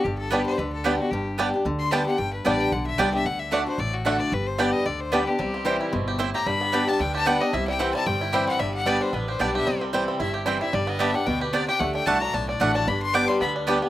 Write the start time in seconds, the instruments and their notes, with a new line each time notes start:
0.04 upright bass G1, steel-string acoustic guitar G2, fiddle G4
0.18 fiddle A4
0.30 steel-string acoustic guitar G3 B3 D4 G4, five-string banjo G3 B3 D4, mandolin B3 G4 D5 G5, fiddle B4
0.46 fiddle C5
0.58 upright bass D2, steel-string acoustic guitar D3, fiddle B4
0.73 fiddle A4
0.84 steel-string acoustic guitar G3 B3 D4 G4, five-string banjo G3 B3 D4, mandolin B3 G4 D5 G5, fiddle G4
0.99 steel-string acoustic guitar D4 G4, fiddle F#4
1.11 upright bass G1, steel-string acoustic guitar G2, fiddle G4
1.38 steel-string acoustic guitar G3 B3 D4 G4, five-string banjo G3 B3 D4, mandolin B3 G4 D5 G5
1.54 steel-string acoustic guitar D4 G4
1.65 upright bass D2, steel-string acoustic guitar D3
1.79 fiddle C6
1.91 steel-string acoustic guitar G3 B3 D4 G4, five-string banjo G3 B3 D4, mandolin B3 G4 D5 G5, fiddle A5
2.06 steel-string acoustic guitar D4 G4, fiddle F#5
2.18 upright bass G1, steel-string acoustic guitar G2, fiddle G5
2.33 fiddle B4
2.45 upright bass A1, steel-string acoustic guitar G3 B3 D4 G4, five-string banjo G3 B3 D4, mandolin B3 G4 D5 G5, fiddle D5
2.60 fiddle G5
2.72 upright bass B1, steel-string acoustic guitar D3, fiddle F#5
2.86 fiddle E5
2.98 upright bass C2, steel-string acoustic guitar G3 B3 D4 G4, five-string banjo G3 B3 D4, mandolin B3 G4 D5 G5, fiddle D5
3.13 steel-string acoustic guitar D4 G4, fiddle E5
3.25 upright bass D2, fiddle F#5
3.40 fiddle E5
3.51 steel-string acoustic guitar D3 A3 D4 F#4, mandolin A3 F#4 D5 F#5, five-string banjo A3 D4, fiddle D5
3.67 steel-string acoustic guitar D4 F#4, fiddle C5
3.78 upright bass A1, steel-string acoustic guitar A2, fiddle D5
3.94 fiddle F#4
4.05 steel-string acoustic guitar D3 A3 D4 F#4, mandolin A3 F#4 D5 F#5, five-string banjo A3 D4, fiddle A4
4.20 fiddle D5
4.32 upright bass G1, steel-string acoustic guitar G2, fiddle B4
4.47 fiddle C5
4.58 steel-string acoustic guitar G3 B3 D4 G4, five-string banjo G3 B3 D4, mandolin B3 G4 D5 G5, fiddle D5
4.73 fiddle D#5
4.86 upright bass D2, steel-string acoustic guitar D3, fiddle D5
5.00 fiddle C5
5.12 steel-string acoustic guitar G3 B3 D4 G4, five-string banjo G3 B3 D4, mandolin B3 G4 D5 G5, fiddle B4
5.27 steel-string acoustic guitar D4 G4, fiddle G4
5.39 upright bass C2, steel-string acoustic guitar C3, five-string banjo G3
5.54 five-string banjo C4
5.65 steel-string acoustic guitar E3 G3 C4 E4, five-string banjo G3, mandolin C4 E4 C5 G5
5.81 five-string banjo E4
5.93 upright bass G1, steel-string acoustic guitar B2, five-string banjo C4
6.08 five-string banjo G4
6.19 steel-string acoustic guitar A2, mandolin C4 E4 C5 G5, five-string banjo E4
6.34 five-string banjo G4, fiddle A#5
6.46 upright bass G1, steel-string acoustic guitar G2, five-string banjo G3, fiddle B5
6.61 five-string banjo B3
6.72 five-string banjo G3, steel-string acoustic guitar G3 B3 D4 G4, mandolin B3 G4 D5 G5
6.87 five-string banjo B3, steel-string acoustic guitar D4 G4, fiddle A5
6.99 upright bass D2, steel-string acoustic guitar D3, five-string banjo D4, fiddle G5
7.15 five-string banjo G4, fiddle A5
7.25 five-string banjo G3, steel-string acoustic guitar G3 B3 D4 G4, mandolin B3 G4 D5 G5, fiddle F#5
7.40 five-string banjo D4, steel-string acoustic guitar D4 G4, fiddle D#5
7.53 upright bass C2, steel-string acoustic guitar C3, five-string banjo E4, fiddle E5
7.67 five-string banjo G3, fiddle G5
7.79 steel-string acoustic guitar E3 G3 C4 E4, mandolin C4 E4 C5 G5, five-string banjo C4, fiddle F#5
7.94 five-string banjo G3, steel-string acoustic guitar C4 E4, fiddle A5
8.06 upright bass G1, steel-string acoustic guitar G2, five-string banjo C4, fiddle G5
8.21 five-string banjo E4
8.33 steel-string acoustic guitar E3 G3 C4 E4, mandolin C4 E4 C5 G5, five-string banjo G4
8.48 five-string banjo C4, fiddle F#5
8.59 upright bass G1, steel-string acoustic guitar G2, five-string banjo G3, fiddle E5
8.74 fiddle F#5
8.85 steel-string acoustic guitar G3 B3 D4 G4, five-string banjo G3, mandolin B3 G4 D5 G5, fiddle D5
9.01 five-string banjo D4, fiddle C5
9.13 upright bass A1, steel-string acoustic guitar D3, five-string banjo B3, fiddle B4
9.28 five-string banjo G4, fiddle C5
9.39 upright bass B1, steel-string acoustic guitar G3 B3 D4 G4, mandolin B3 G4 D5 G5, five-string banjo D4, fiddle D5
9.55 five-string banjo G4, fiddle E5
9.67 upright bass C2, steel-string acoustic guitar C3, five-string banjo G3
9.81 five-string banjo C4
9.93 steel-string acoustic guitar E3 G3 C4 E4, five-string banjo G3, mandolin C4 E4 C5 G5
10.08 five-string banjo C4
10.20 upright bass G1, steel-string acoustic guitar G2, five-string banjo E4, fiddle E5
10.34 five-string banjo G4, fiddle G4
10.46 steel-string acoustic guitar E3 G3 C4 E4, five-string banjo G3, mandolin C4 E4 C5 G5, fiddle C5
10.61 steel-string acoustic guitar C4 E4, five-string banjo E4, fiddle E5
10.73 upright bass G1, steel-string acoustic guitar G2, five-string banjo G3, fiddle D5
10.87 five-string banjo B3, fiddle D#5
10.99 five-string banjo G3, steel-string acoustic guitar G3 B3 D4 G4, mandolin B3 G4 D5 G5, fiddle E5
11.14 five-string banjo D4, steel-string acoustic guitar D4 G4, fiddle F#5
11.26 upright bass D2, steel-string acoustic guitar B2, five-string banjo B3, fiddle G5
11.41 five-string banjo G4, fiddle B4
11.53 steel-string acoustic guitar C3, mandolin B3 G4 D5 G5, five-string banjo D4, fiddle D5
11.68 five-string banjo G4, fiddle G5
11.80 upright bass D2, steel-string acoustic guitar D3, five-string banjo A3, fiddle F#5
11.95 five-string banjo D4, fiddle G5
12.06 upright bass C2, steel-string acoustic guitar D3 A3 D4 F#4, mandolin A3 F#4 D5 F#5, five-string banjo A3, fiddle A5
12.21 five-string banjo D4, steel-string acoustic guitar D4 F#4, fiddle A#5
12.33 upright bass B1, steel-string acoustic guitar A2, five-string banjo D4, fiddle A5
12.49 five-string banjo D4, fiddle D5
12.60 upright bass A1, steel-string acoustic guitar D3 A3 D4 F#4, mandolin A3 F#4 D5 F#5, five-string banjo D4, fiddle F#5
12.75 five-string banjo D4, steel-string acoustic guitar D4 F#4, fiddle A5
12.87 upright bass G1, steel-string acoustic guitar G2, five-string banjo D4, fiddle B5
13.02 fiddle C6
13.13 steel-string acoustic guitar G3 B3 D4 G4, mandolin B3 G4 D5 G5, five-string banjo B3, fiddle D6
13.28 five-string banjo G3, fiddle C6
13.40 upright bass D2, steel-string acoustic guitar D3, five-string banjo B3, fiddle B5
13.56 five-string banjo D4
13.67 steel-string acoustic guitar G3 B3 D4 G4, mandolin B3 G4 D5 G5, five-string banjo G4
13.82 five-string banjo B3, steel-string acoustic guitar D4 G4